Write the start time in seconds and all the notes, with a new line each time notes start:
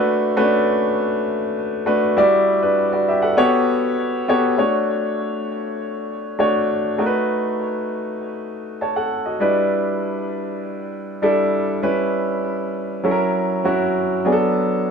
Already playing: A3 D4 F#4 B4
0.37 A3 C#4 F#4 B4
0.43 D4
1.86 A3 D4 F#4 B4
2.17 G3 E4 F#4 D5
2.63 D4 B4
2.92 F#4 D5
3.08 G4 E5
3.22 A4 F#5
3.37 B3 F#4 G4 A4 C#5
4.28 B3 F#4 G4 A4 C#5
4.58 A3 D4 F#4 C#5
6.39 A3 D4 F#4 C#5
6.98 A3 D#4 F#4 A#4
7.06 B4
8.81 C#5 A5
8.96 A4 F#5
9.26 F#4 D#5
9.40 G3 D4 E4 B4
11.22 G3 D4 E4 A4
11.82 G3 C#4 E4 B4
13.04 F#3 C#4 E4 A4
13.11 A#4
13.64 F#3 C#4 E4 F#4
14.25 F#3 B3 D4 G#4
14.32 A4